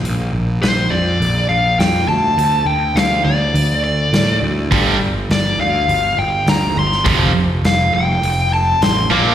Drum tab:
HH |o---o---o---o---|o---o---o---o---|o---o---o---o---|o---o---o---o---|
SD |----o-------o---|----o-------o---|----o-------o--o|----o-------o---|
BD |----------------|----------------|o---------------|o---------------|